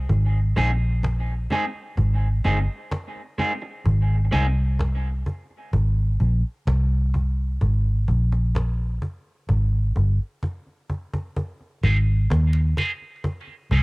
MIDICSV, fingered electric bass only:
0, 0, Header, 1, 2, 480
1, 0, Start_track
1, 0, Key_signature, -4, "major"
1, 0, Tempo, 938967
1, 51, Time_signature, 4, 2, 24, 8
1, 7069, End_track
2, 0, Start_track
2, 0, Title_t, "Fingered electric bass"
2, 0, Program_c, 0, 33
2, 49, Note_on_c, 0, 32, 93
2, 269, Note_off_c, 0, 32, 0
2, 289, Note_on_c, 0, 34, 75
2, 750, Note_off_c, 0, 34, 0
2, 1010, Note_on_c, 0, 32, 81
2, 1230, Note_off_c, 0, 32, 0
2, 1252, Note_on_c, 0, 31, 82
2, 1361, Note_off_c, 0, 31, 0
2, 1972, Note_on_c, 0, 32, 95
2, 2191, Note_off_c, 0, 32, 0
2, 2213, Note_on_c, 0, 36, 78
2, 2671, Note_off_c, 0, 36, 0
2, 2931, Note_on_c, 0, 32, 86
2, 3150, Note_off_c, 0, 32, 0
2, 3172, Note_on_c, 0, 34, 96
2, 3281, Note_off_c, 0, 34, 0
2, 3411, Note_on_c, 0, 36, 86
2, 3871, Note_off_c, 0, 36, 0
2, 3893, Note_on_c, 0, 32, 88
2, 4111, Note_off_c, 0, 32, 0
2, 4131, Note_on_c, 0, 34, 77
2, 4591, Note_off_c, 0, 34, 0
2, 4852, Note_on_c, 0, 32, 82
2, 5071, Note_off_c, 0, 32, 0
2, 5093, Note_on_c, 0, 31, 88
2, 5202, Note_off_c, 0, 31, 0
2, 6050, Note_on_c, 0, 32, 93
2, 6270, Note_off_c, 0, 32, 0
2, 6291, Note_on_c, 0, 39, 92
2, 6510, Note_off_c, 0, 39, 0
2, 7010, Note_on_c, 0, 36, 86
2, 7069, Note_off_c, 0, 36, 0
2, 7069, End_track
0, 0, End_of_file